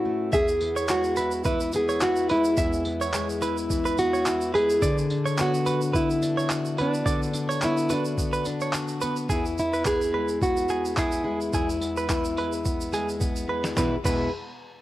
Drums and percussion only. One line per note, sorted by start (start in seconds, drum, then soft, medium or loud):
0.33 kick loud
0.33 shaker medium
0.48 shaker soft
0.61 tambourine medium
0.77 shaker soft
0.88 clap loud
0.88 shaker medium
1.04 shaker soft
1.16 tambourine medium
1.16 shaker medium
1.31 shaker soft
1.44 kick medium
1.44 shaker medium
1.60 shaker soft
1.72 tambourine medium
1.72 shaker soft
1.89 shaker soft
2.01 clap loud
2.01 shaker medium
2.16 shaker soft
2.29 tambourine medium
2.44 shaker soft
2.57 kick loud
2.57 shaker medium
2.73 shaker soft
2.85 tambourine medium
3.01 shaker soft
3.13 clap loud
3.13 shaker medium
3.30 shaker soft
3.42 tambourine medium
3.42 shaker soft
3.57 shaker soft
3.70 kick medium
3.70 shaker medium
3.86 shaker medium
3.98 tambourine medium
3.98 shaker soft
4.14 shaker soft
4.26 clap loud
4.26 shaker medium
4.41 shaker soft
4.55 tambourine medium
4.70 shaker soft
4.82 kick loud
4.82 shaker medium
4.98 shaker soft
5.10 tambourine medium
5.26 shaker soft
5.38 clap loud
5.38 shaker medium
5.54 shaker soft
5.66 tambourine medium
5.66 shaker medium
5.81 shaker soft
5.94 kick medium
5.94 shaker medium
6.10 shaker soft
6.22 tambourine medium
6.22 shaker soft
6.39 shaker soft
6.50 clap loud
6.50 shaker medium
6.65 shaker soft
6.78 tambourine medium
6.94 shaker soft
7.06 kick loud
7.06 shaker medium
7.23 shaker soft
7.33 tambourine medium
7.33 shaker soft
7.51 shaker soft
7.62 clap medium
7.62 shaker medium
7.78 shaker soft
7.89 tambourine medium
7.89 shaker medium
8.05 shaker soft
8.18 kick medium
8.18 shaker medium
8.33 shaker soft
8.45 tambourine medium
8.45 shaker soft
8.61 shaker soft
8.73 clap loud
8.73 shaker medium
8.88 shaker soft
9.01 tambourine medium
9.01 shaker soft
9.16 shaker soft
9.29 kick loud
9.29 shaker medium
9.46 shaker soft
9.58 shaker soft
9.74 shaker soft
9.85 kick medium
9.85 clap medium
9.85 shaker medium
10.01 shaker soft
10.28 shaker soft
10.42 kick medium
10.42 shaker medium
10.57 shaker soft
10.69 shaker soft
10.85 shaker soft
10.97 kick loud
10.97 clap loud
10.97 shaker medium
11.12 shaker soft
11.41 shaker soft
11.53 kick loud
11.53 shaker medium
11.70 shaker soft
11.81 tambourine medium
11.81 shaker soft
11.97 shaker soft
12.09 kick loud
12.09 clap medium
12.09 shaker medium
12.25 shaker soft
12.37 tambourine medium
12.52 shaker soft
12.65 kick medium
12.65 shaker medium
12.81 shaker soft
12.93 tambourine medium
12.93 shaker soft
13.09 shaker soft
13.21 kick loud
13.21 shaker medium
13.36 shaker soft
13.64 snare medium
13.64 shaker soft
13.77 kick loud
13.77 snare medium
13.77 shaker medium
14.04 kick loud
14.04 crash medium
14.04 shaker medium